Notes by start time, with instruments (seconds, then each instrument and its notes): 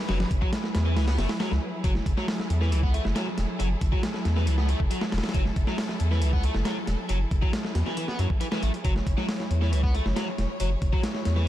Already playing: string section F#3 E4 G#4 B4
0.09 sub bass F#1, overdriven electric guitar F#3, snare, open hi-hat
0.20 snare, open hi-hat
0.31 sub bass F#1, kick, closed hi-hat
0.42 overdriven electric guitar F#3, kick
0.53 snare, closed hi-hat
0.64 snare
0.75 sub bass E2, snare, closed hi-hat
0.85 overdriven electric guitar E3
0.96 sub bass C#2, overdriven electric guitar E3, snare, open hi-hat
1.07 overdriven electric guitar B3, snare, open hi-hat
1.18 sub bass F#1, overdriven electric guitar A3, snare, open hi-hat
1.29 snare, open hi-hat
1.40 overdriven electric guitar F#3, snare, open hi-hat
1.51 sub bass C#2, snare
1.84 sub bass F#1, overdriven electric guitar F#3, string section A4, kick, closed hi-hat
1.95 snare
2.06 sub bass F#1, kick, closed hi-hat
2.17 overdriven electric guitar F#3, snare
2.28 snare, open hi-hat
2.40 snare
2.50 sub bass E2, closed hi-hat
2.61 overdriven electric guitar E3, snare
2.72 sub bass C#2, overdriven electric guitar E3, closed hi-hat
2.83 overdriven electric guitar B3, kick
2.94 overdriven electric guitar A3, closed hi-hat
3.05 sub bass F#1, snare
3.15 overdriven electric guitar F#3, snare, closed hi-hat
3.38 sub bass E1, snare, closed hi-hat
3.59 sub bass F#1, overdriven electric guitar F#3, closed hi-hat
3.81 sub bass F#1, kick, closed hi-hat
3.92 overdriven electric guitar F#3, kick
4.03 snare, closed hi-hat
4.14 snare
4.25 sub bass E2, snare, closed hi-hat
4.36 overdriven electric guitar E3, snare
4.47 sub bass C#2, overdriven electric guitar E3, closed hi-hat
4.58 overdriven electric guitar B3, snare
4.69 overdriven electric guitar A3, closed hi-hat
4.80 sub bass F#1, kick
4.91 overdriven electric guitar F#3, closed hi-hat
5.01 snare
5.12 sub bass E1, snare, open hi-hat
5.18 snare, open hi-hat
5.24 snare, open hi-hat
5.29 snare, open hi-hat
5.34 sub bass F#1, overdriven electric guitar F#3, kick, closed hi-hat
5.46 snare
5.56 sub bass F#1, kick, closed hi-hat
5.67 overdriven electric guitar F#3, snare
5.78 snare, open hi-hat
5.89 snare
6.00 sub bass E2, closed hi-hat
6.11 overdriven electric guitar E3, snare
6.22 sub bass C#2, overdriven electric guitar E3, closed hi-hat
6.33 overdriven electric guitar B3, kick
6.43 overdriven electric guitar A3, closed hi-hat
6.55 sub bass F#1, snare
6.65 overdriven electric guitar F#3, snare, closed hi-hat
6.87 sub bass E1, snare, closed hi-hat
7.09 sub bass F#1, overdriven electric guitar F#3, closed hi-hat
7.31 sub bass F#1, kick, closed hi-hat
7.42 overdriven electric guitar F#3, kick
7.53 snare, closed hi-hat
7.65 snare
7.75 sub bass E2, snare, closed hi-hat
7.86 overdriven electric guitar E3, snare
7.97 overdriven electric guitar E3, closed hi-hat
8.08 overdriven electric guitar B3, snare
8.19 sub bass F#2, overdriven electric guitar F#3, closed hi-hat
8.30 kick
8.41 overdriven electric guitar E3, closed hi-hat
8.52 overdriven electric guitar E3, snare
8.63 sub bass A1, overdriven electric guitar A3, closed hi-hat
8.74 closed hi-hat
8.85 sub bass F#1, overdriven electric guitar F#3, string section C#5, kick, closed hi-hat
8.96 snare
9.07 sub bass F#1, kick, closed hi-hat
9.18 overdriven electric guitar F#3, snare
9.29 snare, open hi-hat
9.40 snare
9.51 sub bass E2, closed hi-hat
9.61 overdriven electric guitar E3, snare
9.72 sub bass C#2, overdriven electric guitar E3, closed hi-hat
9.83 overdriven electric guitar B3, kick
9.94 overdriven electric guitar A3, closed hi-hat
10.05 sub bass F#1, snare
10.16 overdriven electric guitar F#3, snare, closed hi-hat
10.38 sub bass E1, snare, closed hi-hat
10.60 sub bass F#1, overdriven electric guitar F#3, closed hi-hat
10.82 sub bass F#1, kick, closed hi-hat
10.93 overdriven electric guitar F#3, kick
11.03 snare, closed hi-hat
11.15 snare
11.25 sub bass E2, snare, closed hi-hat
11.36 overdriven electric guitar E3, snare